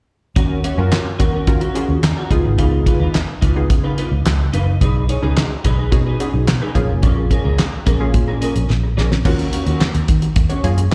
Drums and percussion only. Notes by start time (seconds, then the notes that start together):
0.36 kick, closed hi-hat
0.64 closed hi-hat
0.92 snare, clap, closed hi-hat
1.20 kick, closed hi-hat
1.47 kick, closed hi-hat
1.61 closed hi-hat
1.75 closed hi-hat
2.03 snare, clap, closed hi-hat
2.31 kick, closed hi-hat
2.59 kick, closed hi-hat
2.86 kick, closed hi-hat
3.14 snare, clap, closed hi-hat
3.42 kick, closed hi-hat
3.70 kick, closed hi-hat
3.98 closed hi-hat
4.26 snare, clap, closed hi-hat
4.54 closed hi-hat
4.81 kick, closed hi-hat
5.09 closed hi-hat
5.37 snare, clap, closed hi-hat
5.65 kick, closed hi-hat
5.92 kick, closed hi-hat
6.20 closed hi-hat
6.47 snare, clap, closed hi-hat
6.75 kick, closed hi-hat
7.03 kick, closed hi-hat
7.31 kick, closed hi-hat
7.58 snare, clap, closed hi-hat
7.87 kick, closed hi-hat
8.14 kick, closed hi-hat
8.42 closed hi-hat
8.56 closed hi-hat
8.70 snare
8.98 snare
9.12 snare
9.25 kick, crash
9.39 closed hi-hat
9.53 closed hi-hat
9.67 closed hi-hat
9.81 snare, clap
9.95 closed hi-hat
10.08 kick, closed hi-hat
10.22 closed hi-hat
10.36 kick, closed hi-hat
10.50 closed hi-hat
10.64 closed hi-hat
10.78 closed hi-hat